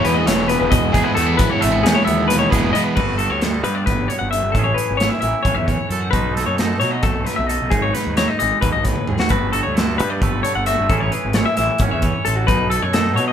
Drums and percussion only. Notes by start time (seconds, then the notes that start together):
0.05 snare, closed hi-hat
0.27 snare, closed hi-hat
0.49 closed hi-hat
0.72 kick, closed hi-hat
0.94 kick, closed hi-hat
1.17 closed hi-hat
1.39 kick, closed hi-hat
1.62 closed hi-hat
1.86 snare, closed hi-hat
2.07 closed hi-hat
2.30 snare, closed hi-hat
2.52 kick, snare, closed hi-hat
2.75 closed hi-hat
2.96 kick, crash
3.19 closed hi-hat
3.42 snare, closed hi-hat
3.64 closed hi-hat
3.87 kick, snare, closed hi-hat
4.10 closed hi-hat
4.33 closed hi-hat
4.55 kick, closed hi-hat
4.78 closed hi-hat
5.00 snare, closed hi-hat
5.22 closed hi-hat
5.45 kick, closed hi-hat
5.68 kick, closed hi-hat
5.91 closed hi-hat
6.13 kick, closed hi-hat
6.37 snare, closed hi-hat
6.58 snare, closed hi-hat
6.81 snare, closed hi-hat
7.03 kick, snare, closed hi-hat
7.27 snare, closed hi-hat
7.49 closed hi-hat
7.71 kick, closed hi-hat
7.95 snare, closed hi-hat
8.17 snare, closed hi-hat
8.40 closed hi-hat
8.62 kick, closed hi-hat
8.85 kick, snare, closed hi-hat
8.96 high tom
9.07 mid tom
9.19 snare
9.29 kick, closed hi-hat
9.53 closed hi-hat
9.77 snare, closed hi-hat
10.00 closed hi-hat
10.22 kick, closed hi-hat
10.45 closed hi-hat
10.66 snare, closed hi-hat
10.90 kick, closed hi-hat
11.12 closed hi-hat
11.33 snare, closed hi-hat
11.57 snare, closed hi-hat
11.79 kick, closed hi-hat
12.02 kick, closed hi-hat
12.25 closed hi-hat
12.48 kick, closed hi-hat
12.71 closed hi-hat
12.93 snare, closed hi-hat
13.17 closed hi-hat